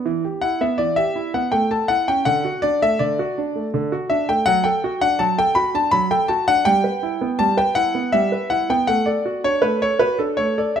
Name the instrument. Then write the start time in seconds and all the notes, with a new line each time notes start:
grand piano
0.06 E3
0.25 G4
0.41 E4 F#5
0.61 B3 E5
0.78 E3 D5
0.96 G4 E5
1.16 E4
1.34 B3 F#5
1.52 A3 G5
1.71 A4 A5
1.88 E4 F#5
2.08 C#4 G5
2.25 D3 F#5
2.45 F#4
2.62 D4 D5
2.82 A3 E5
2.99 D3 D5
3.19 F#4
3.38 D4
3.56 A3
3.74 D3
3.92 F#4
4.10 D4 E5
4.29 A3 G5
4.46 F#3 F#5
4.64 A4 G5
4.84 F#4
5.01 D4 F#5
5.19 F#3 A5
5.38 A4 G5
5.55 F#4 B5
5.74 D4 A5
5.91 F#3 B5
6.11 A4 G5
6.28 F#4 A5
6.48 D4 F#5
6.65 G3 G5
6.84 B4
7.03 E4
7.21 B3
7.39 G3 A5
7.57 B4 G5
7.75 E4 F#5
7.95 B3
8.12 G3 E5
8.32 B4
8.50 E4 F#5
8.70 B3 G5
8.87 A3 F#5
9.06 A4 D5
9.26 F#4
9.44 D4 C#5
9.62 A3 B4
9.82 A4 C#5
9.99 F#4 B4
10.19 D4 A4
10.37 A3 C#5
10.58 A4 D5
10.76 E5